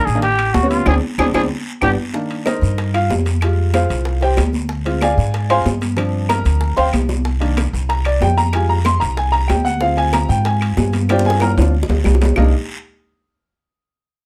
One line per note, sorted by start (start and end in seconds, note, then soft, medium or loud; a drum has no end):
0.05 0.52 A1 medium
0.05 0.21 G#4 medium
0.05 short guiro medium
0.15 0.23 D#3 medium
0.15 0.23 A#3 medium
0.15 0.23 D4 medium
0.22 0.55 G4 loud
0.22 high bongo medium
0.22 high conga soft
0.22 high timbale medium
0.22 long guiro medium
0.38 high conga soft
0.38 high timbale medium
0.38 claves medium
0.54 0.85 D2 medium
0.54 0.69 F#4 medium
0.54 high bongo medium
0.54 low bongo medium
0.54 high conga medium
0.54 low timbale medium
0.54 short guiro medium
0.63 0.80 G3 medium
0.63 0.80 B3 medium
0.63 0.80 C#4 medium
0.69 0.85 F4 medium
0.69 high conga medium
0.69 high timbale medium
0.69 short guiro medium
0.86 0.99 D2 medium
0.86 0.97 G#3 medium
0.86 0.97 C4 medium
0.86 0.97 D4 medium
0.86 0.95 G#4 loud
0.86 low bongo medium
0.86 high conga loud
0.86 high timbale loud
0.86 long guiro loud
0.86 claves loud
1.18 1.30 D2 medium
1.18 1.29 G#3 medium
1.18 1.29 C4 medium
1.18 1.29 D4 medium
1.18 1.26 G#4 medium
1.18 low bongo medium
1.18 high conga medium
1.18 high timbale medium
1.18 long guiro medium
1.18 claves loud
1.34 1.46 D2 medium
1.34 1.45 G#3 medium
1.34 1.45 C4 loud
1.34 1.45 D4 loud
1.34 1.42 G#4 medium
1.34 low bongo loud
1.34 high conga medium
1.34 high timbale loud
1.34 long guiro loud
1.34 claves medium
1.82 1.94 G1 medium
1.82 1.92 G3 medium
1.82 1.92 B3 medium
1.82 1.92 D4 medium
1.82 1.90 G4 medium
1.82 low bongo loud
1.82 high conga loud
1.82 high timbale medium
1.82 long guiro medium
1.82 claves loud
2.13 2.59 D#3 soft
2.13 2.60 A#3 soft
2.13 2.60 D4 medium
2.13 high bongo medium
2.13 high conga soft
2.13 long guiro medium
2.31 high conga soft
2.31 high timbale medium
2.46 2.91 D#4 medium
2.46 2.91 A#4 medium
2.46 2.91 C5 medium
2.46 2.90 D#5 medium
2.46 high bongo medium
2.46 high conga loud
2.46 high timbale medium
2.46 low timbale medium
2.46 short guiro medium
2.46 claves medium
2.61 3.07 G2 medium
2.61 high bongo soft
2.61 high conga soft
2.61 short guiro medium
2.78 high bongo medium
2.78 high conga soft
2.78 high timbale medium
2.78 long guiro medium
2.94 3.10 F4 medium
2.94 3.10 F5 medium
2.94 high bongo soft
2.94 high conga soft
2.94 high timbale medium
2.94 claves medium
3.10 3.84 F2 medium
3.10 high bongo soft
3.10 low bongo medium
3.10 high conga medium
3.10 low timbale medium
3.10 short guiro medium
3.26 high bongo soft
3.26 high conga medium
3.26 high timbale medium
3.26 short guiro medium
3.41 3.88 G3 medium
3.41 3.88 G#3 soft
3.41 3.73 F4 medium
3.41 high bongo medium
3.41 high timbale medium
3.41 long guiro medium
3.41 claves medium
3.59 high conga soft
3.74 4.19 F4 medium
3.74 4.19 G#4 medium
3.74 4.19 C5 medium
3.74 4.19 F5 medium
3.74 high bongo medium
3.74 high conga medium
3.74 high timbale medium
3.74 low timbale medium
3.74 short guiro medium
3.74 claves medium
3.89 4.35 C2 medium
3.89 high bongo soft
3.89 high conga soft
3.89 high timbale medium
3.89 short guiro medium
4.05 high bongo medium
4.05 high conga soft
4.05 long guiro medium
4.21 4.38 G4 medium
4.21 4.38 C5 medium
4.21 4.38 G5 medium
4.21 high bongo soft
4.21 high conga soft
4.21 high timbale medium
4.37 5.12 D2 medium
4.37 high bongo soft
4.37 low bongo medium
4.37 high conga medium
4.37 high timbale medium
4.37 low timbale medium
4.37 short guiro medium
4.37 claves medium
4.53 high bongo soft
4.53 high conga medium
4.53 short guiro medium
4.69 high bongo medium
4.69 high conga soft
4.69 long guiro medium
4.85 5.06 G#3 medium
4.85 5.07 C4 soft
4.85 5.07 F4 medium
4.85 high timbale medium
5.01 5.46 G#4 medium
5.01 5.47 D5 medium
5.01 5.47 F5 medium
5.01 5.46 G#5 medium
5.01 high bongo medium
5.01 high conga medium
5.01 high timbale medium
5.01 low timbale medium
5.01 short guiro medium
5.01 claves medium
5.18 5.62 G#2 medium
5.18 high bongo soft
5.18 high conga soft
5.18 short guiro medium
5.34 high bongo medium
5.34 high conga soft
5.34 high timbale medium
5.34 long guiro medium
5.50 5.64 G#3 soft
5.50 5.64 C4 soft
5.50 5.64 F4 medium
5.50 5.66 C5 medium
5.50 5.65 F5 medium
5.50 5.65 G#5 medium
5.50 5.65 C6 loud
5.50 high bongo soft
5.50 high conga soft
5.50 high timbale medium
5.50 claves medium
5.65 6.40 G2 medium
5.65 high bongo soft
5.65 low bongo medium
5.65 high conga medium
5.65 low timbale medium
5.65 short guiro medium
5.81 high bongo soft
5.81 high conga medium
5.81 high timbale medium
5.81 short guiro medium
5.96 7.21 F3 medium
5.96 7.21 C4 soft
5.96 7.21 D4 medium
5.96 high bongo medium
5.96 high timbale medium
5.96 long guiro medium
5.96 claves medium
6.14 high conga soft
6.29 6.74 A#4 medium
6.29 6.74 A#5 medium
6.29 high bongo medium
6.29 high conga loud
6.29 high timbale medium
6.29 low timbale medium
6.29 short guiro medium
6.29 claves medium
6.45 6.75 D2 medium
6.45 high bongo soft
6.45 high conga soft
6.45 high timbale medium
6.45 short guiro medium
6.61 high bongo medium
6.61 high conga soft
6.61 long guiro medium
6.77 6.92 D2 medium
6.77 6.87 C5 medium
6.77 6.87 F5 medium
6.77 6.87 G5 medium
6.77 6.86 C6 loud
6.77 high bongo medium
6.77 high conga soft
6.77 high timbale medium
6.93 7.68 C2 medium
6.93 high conga medium
6.93 high timbale medium
6.93 low timbale medium
6.93 short guiro medium
6.93 claves medium
7.09 low bongo medium
7.09 high conga medium
7.09 short guiro medium
7.25 high bongo medium
7.25 high conga soft
7.25 long guiro medium
7.40 7.62 D#3 medium
7.40 7.62 A#3 medium
7.40 7.62 D4 medium
7.40 high timbale medium
7.57 high bongo medium
7.57 high conga medium
7.57 high timbale medium
7.57 low timbale medium
7.57 short guiro medium
7.57 claves medium
7.73 8.18 C2 medium
7.73 high bongo soft
7.73 high conga soft
7.73 short guiro medium
7.89 8.05 A#5 medium
7.89 high bongo medium
7.89 high conga soft
7.89 high timbale medium
7.89 long guiro medium
8.05 8.21 D5 medium
8.05 high bongo soft
8.05 high conga soft
8.05 high timbale medium
8.05 claves medium
8.21 8.96 F2 medium
8.21 8.37 G5 medium
8.21 high bongo soft
8.21 low bongo medium
8.21 high conga medium
8.21 low timbale medium
8.21 short guiro medium
8.37 8.53 A#5 loud
8.37 high bongo soft
8.37 high conga medium
8.37 high timbale medium
8.37 short guiro medium
8.53 8.75 G3 soft
8.53 8.75 G#3 soft
8.53 8.75 F4 medium
8.53 8.69 G#5 medium
8.53 high bongo medium
8.53 high timbale loud
8.53 long guiro medium
8.53 claves medium
8.69 8.85 A#5 medium
8.69 high conga soft
8.85 9.01 C6 loud
8.85 high bongo medium
8.85 high conga loud
8.85 high timbale medium
8.85 low timbale medium
8.85 short guiro medium
8.85 claves medium
9.00 9.47 C2 medium
9.00 9.16 A#5 medium
9.00 high bongo soft
9.00 high timbale medium
9.00 short guiro medium
9.17 9.33 G#5 medium
9.17 high bongo medium
9.17 high conga soft
9.17 long guiro medium
9.32 9.48 A#5 loud
9.32 high bongo soft
9.32 high conga soft
9.32 high timbale medium
9.48 10.24 D2 medium
9.48 9.64 G5 medium
9.48 high bongo soft
9.48 low bongo medium
9.48 high conga medium
9.48 high timbale medium
9.48 low timbale medium
9.48 short guiro medium
9.48 claves medium
9.65 9.81 F#5 loud
9.65 high bongo soft
9.65 high conga medium
9.65 short guiro medium
9.81 11.05 C4 soft
9.81 11.06 F4 medium
9.81 11.05 G#4 soft
9.81 9.97 F5 medium
9.81 high bongo medium
9.81 high conga soft
9.81 long guiro medium
9.97 10.13 G#5 loud
9.97 high timbale medium
10.13 10.29 A#5 medium
10.13 high bongo medium
10.13 high conga loud
10.13 high timbale medium
10.13 low timbale medium
10.13 short guiro medium
10.13 claves medium
10.29 10.74 G#2 loud
10.29 10.45 G5 medium
10.29 high bongo soft
10.29 short guiro medium
10.45 10.90 G#5 medium
10.45 high bongo medium
10.45 high conga soft
10.45 high timbale medium
10.45 long guiro medium
10.61 high bongo soft
10.61 high conga soft
10.61 high timbale medium
10.61 claves medium
10.77 11.52 G2 medium
10.77 high bongo soft
10.77 low bongo medium
10.77 high conga medium
10.77 low timbale medium
10.77 short guiro medium
10.93 high bongo soft
10.93 high conga medium
10.93 high timbale medium
10.93 short guiro medium
11.09 11.55 C4 medium
11.09 11.55 D4 soft
11.09 11.56 F4 medium
11.09 11.26 G4 medium
11.09 11.26 C5 medium
11.09 11.26 D5 medium
11.09 11.26 G5 medium
11.09 high bongo medium
11.09 high conga medium
11.09 high timbale loud
11.09 long guiro medium
11.09 claves medium
11.19 high bongo medium
11.25 11.41 G#4 medium
11.25 11.41 G#5 medium
11.25 high conga medium
11.30 high bongo medium
11.40 11.51 A#4 medium
11.40 11.51 A#5 medium
11.40 high bongo medium
11.40 high conga loud
11.40 high timbale medium
11.40 short guiro medium
11.40 claves medium
11.57 11.87 D2 loud
11.57 11.72 C4 soft
11.57 11.72 D4 soft
11.57 11.72 F4 medium
11.57 low conga medium
11.57 high timbale medium
11.57 short guiro medium
11.62 low bongo loud
11.74 long guiro medium
11.83 low bongo medium
11.89 12.04 D2 medium
11.89 low conga loud
11.89 low timbale medium
12.04 12.33 C2 medium
12.04 low bongo medium
12.04 low conga loud
12.04 low timbale medium
12.04 short guiro medium
12.04 claves medium
12.15 low bongo medium
12.21 low conga medium
12.21 low timbale loud
12.21 short guiro medium
12.25 low bongo medium
12.36 12.52 C2 medium
12.36 12.52 A#3 medium
12.36 12.52 D4 medium
12.36 12.52 D#4 medium
12.36 low bongo medium
12.36 low conga loud
12.36 low timbale loud
12.36 long guiro loud
12.36 claves loud